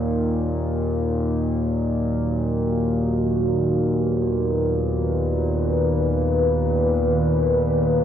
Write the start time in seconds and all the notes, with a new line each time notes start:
Already playing: D#2 A#2 D#4 A#4 F5
0.22 D#3
0.72 F#4
2.40 B4
6.87 G#4